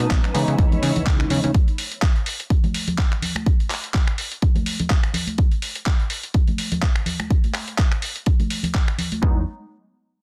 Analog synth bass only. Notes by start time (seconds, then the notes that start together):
0.11 B1
0.35 C#3
0.48 C#3
0.58 C#2
0.82 C#3
0.96 C#2
1.06 C#2
1.31 C#3
1.44 C#3
9.23 E2